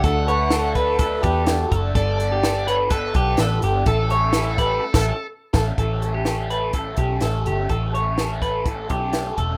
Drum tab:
CC |----------------|----------------|---------x----x-|----------------|
HH |x-x-x-x-x-x-x-x-|x-x-x-x-x-x-x-x-|x-x-x-x---------|x-x-x-x-x-x-x-x-|
SD |----o-------o---|----o-------o---|----o----o----o-|----o-------o---|
BD |o-----o-o-o---o-|o-------o-o-----|o-----o--o----o-|o-------o-o-----|

CC |----------------|
HH |x-x-x-x-x-x-x-x-|
SD |----o-------o---|
BD |o-----o-o-o---o-|